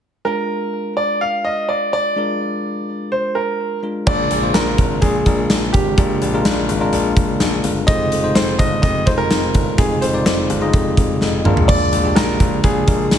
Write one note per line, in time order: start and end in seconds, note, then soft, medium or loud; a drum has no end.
0.25 2.12 G#3 medium
0.25 2.12 D4 soft
0.25 2.13 F4 soft
0.25 0.93 A#4 medium
0.25 2.13 A#4 medium
0.97 1.22 D5 medium
1.21 1.46 F5 medium
1.44 1.69 D#5 medium
1.69 1.92 D5 medium
1.93 3.15 D5 loud
2.16 3.79 G#3 medium
2.16 3.80 D4 medium
2.16 3.80 F4 soft
2.16 3.81 A#4 medium
3.12 3.36 C5 medium
3.35 3.80 A#4 medium
3.82 4.05 G#3 soft
3.82 4.05 D4 soft
3.82 4.06 F4 soft
3.82 4.06 A#4 soft
4.06 4.24 A#1 medium
4.06 4.40 G#3 medium
4.06 4.40 D4 medium
4.06 4.40 F4 medium
4.06 4.40 A#4 medium
4.06 4.56 D5 loud
4.06 kick loud
4.06 crash medium
4.31 4.48 A#1 medium
4.31 closed hi-hat medium
4.42 5.20 G#3 medium
4.42 5.20 D4 medium
4.42 5.20 F4 medium
4.42 5.21 C5 medium
4.54 4.72 A#1 medium
4.54 5.03 A#4 medium
4.54 snare loud
4.54 closed hi-hat medium
4.78 4.96 G#1 medium
4.78 kick medium
4.78 closed hi-hat medium
5.01 5.19 A#1 medium
5.01 5.75 G#4 medium
5.01 kick medium
5.01 closed hi-hat medium
5.26 5.43 A#1 medium
5.26 5.92 G#3 medium
5.26 5.93 D4 medium
5.26 5.93 F4 medium
5.26 5.93 A#4 medium
5.26 kick medium
5.26 closed hi-hat medium
5.50 5.67 A#1 medium
5.50 snare medium
5.50 closed hi-hat medium
5.73 5.98 G#1 medium
5.73 6.41 G4 medium
5.73 kick medium
5.73 closed hi-hat medium
5.98 6.15 A#1 loud
5.98 6.31 G#3 medium
5.98 6.31 D4 medium
5.98 6.31 F4 medium
5.98 6.31 A#4 medium
5.98 kick loud
5.98 closed hi-hat medium
6.22 6.39 A#1 medium
6.22 closed hi-hat medium
6.34 6.78 G#3 medium
6.34 6.78 D4 medium
6.34 6.78 F4 medium
6.34 6.78 A#4 medium
6.45 6.69 A#1 loud
6.45 snare loud
6.45 closed hi-hat medium
6.69 6.86 G#1 medium
6.69 closed hi-hat medium
6.80 7.69 G#3 medium
6.80 7.69 D4 medium
6.80 7.70 F4 medium
6.80 7.70 A#4 medium
6.93 7.10 A#1 loud
6.93 closed hi-hat medium
7.17 7.34 A#1 medium
7.17 kick medium
7.17 closed hi-hat medium
7.40 7.57 A#1 medium
7.40 snare medium
7.40 closed hi-hat medium
7.64 7.81 G1 medium
7.64 closed hi-hat medium
7.87 8.05 F1 loud
7.87 8.21 G#3 medium
7.87 8.21 D#4 medium
7.87 8.21 F4 medium
7.87 8.22 C5 medium
7.87 8.36 D#5 loud
7.87 kick loud
7.87 closed hi-hat medium
8.12 8.29 F1 medium
8.12 closed hi-hat medium
8.23 9.01 G#3 medium
8.23 9.01 D#4 medium
8.23 9.01 F4 medium
8.23 9.02 C5 medium
8.35 8.53 F1 loud
8.35 8.60 C5 medium
8.35 snare loud
8.35 closed hi-hat medium
8.59 8.76 G1 medium
8.59 8.81 D#5 medium
8.59 kick medium
8.59 closed hi-hat medium
8.82 9.00 F1 loud
8.82 9.07 D#5 medium
8.82 kick medium
8.82 closed hi-hat medium
9.06 9.24 F1 medium
9.06 9.73 G#3 medium
9.06 9.74 D#4 medium
9.06 9.74 F4 medium
9.06 9.11 C5 medium
9.06 9.74 C5 medium
9.06 kick medium
9.06 closed hi-hat medium
9.18 9.80 A#4 loud
9.31 9.48 F1 medium
9.31 snare loud
9.31 closed hi-hat medium
9.54 9.72 G1 medium
9.54 kick medium
9.54 closed hi-hat medium
9.78 9.96 F1 medium
9.78 10.11 G#3 medium
9.78 10.11 D#4 medium
9.78 10.12 F4 medium
9.78 10.03 G#4 medium
9.78 10.12 G#4 medium
9.78 kick loud
9.78 closed hi-hat medium
10.01 10.19 F1 medium
10.01 10.93 C5 medium
10.01 closed hi-hat medium
10.13 10.58 G#3 medium
10.13 10.58 D#4 medium
10.13 10.58 F4 medium
10.13 10.59 D5 medium
10.26 10.43 F1 medium
10.26 snare loud
10.26 closed hi-hat medium
10.50 10.67 G1 medium
10.50 closed hi-hat medium
10.61 11.43 G#3 medium
10.61 11.45 D#4 medium
10.61 11.44 F4 medium
10.61 11.45 D#5 medium
10.73 10.91 F1 medium
10.73 kick medium
10.73 closed hi-hat medium
10.97 11.15 F1 medium
10.97 kick medium
10.97 closed hi-hat medium
11.21 11.39 F1 loud
11.21 snare soft
11.45 11.80 A#1 medium
11.45 12.00 G#3 medium
11.45 12.01 D4 medium
11.45 12.01 F4 medium
11.45 12.01 A#4 medium
11.45 mid tom medium
11.57 floor tom medium
11.68 12.17 D5 loud
11.68 kick loud
11.68 splash medium
11.93 12.10 A#1 medium
11.93 closed hi-hat medium
12.04 12.82 G#3 medium
12.04 12.82 D4 medium
12.04 12.82 F4 medium
12.04 12.83 G4 medium
12.15 12.34 A#1 medium
12.15 12.65 A#4 medium
12.15 snare loud
12.15 closed hi-hat medium
12.40 12.57 A#1 medium
12.40 kick medium
12.40 closed hi-hat medium
12.64 12.81 A#1 medium
12.64 13.18 G#4 medium
12.64 kick medium
12.64 closed hi-hat medium
12.87 13.05 A#1 medium
12.87 13.18 G#3 medium
12.87 13.18 D4 medium
12.87 13.18 F4 medium
12.87 13.18 A#4 medium
12.87 kick medium
12.87 closed hi-hat medium
13.11 13.18 A#1 medium
13.11 snare medium
13.11 closed hi-hat medium